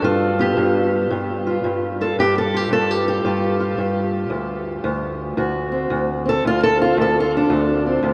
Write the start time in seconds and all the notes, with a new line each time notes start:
0.02 G2 F4
0.39 B3 G4
0.57 G2
1.11 G2
1.47 F4
1.64 G2
2.01 F4 A4
2.19 G2 G4
2.38 A4
2.54 F4 G4
2.71 G2 A4
2.91 G4
3.08 G4
3.25 G2 F4
3.60 F4
3.78 G2
4.30 D2
4.84 D2
5.37 D2 F#4
5.72 C4
5.90 D2
6.26 C4 A4
6.45 D2 F4
6.63 A4
6.80 C4 F4
6.97 D2
7.01 A4
7.20 F4
7.37 D4
7.50 D2
7.86 C4
8.03 D2